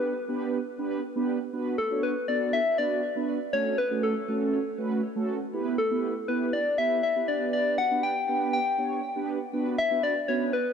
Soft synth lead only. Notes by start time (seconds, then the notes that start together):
Already playing: B4
1.78 A4
2.03 B4
2.28 D5
2.53 E5
2.78 D5
3.53 C#5
3.78 B4
4.03 A4
5.78 A4
6.28 B4
6.53 D5
6.78 E5
7.03 E5
7.28 D5
7.53 D5
7.78 F#5
8.03 G5
8.53 G5
9.78 E5
10.03 D5
10.28 C#5
10.53 B4